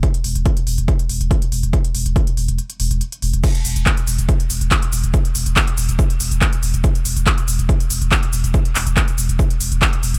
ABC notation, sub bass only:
X:1
M:4/4
L:1/16
Q:1/4=141
K:C
V:1 name="Sub bass" clef=bass
z2 E,,, E,,, z2 E,,, E,,, z2 E,,, E,,, z2 E,,, E,,, | z2 E,,, E,,, z2 E,,, E,,, z2 E,,, E,,, z2 E,,, E,,, | z2 E,,, E,,, z2 E,,, E,,, z2 E,,, E,,, z2 E,,, E,,, | z2 E,,, E,,, z2 E,,, E,,, z2 E,,, E,,, z2 E,,, E,,, |
z2 E,,, E,,, z2 E,,, E,,, z2 E,,, E,,, z2 E,,, E,,, | z2 E,,, E,,, z2 E,,, E,,, z2 E,,, E,,, z2 E,,, E,,, |]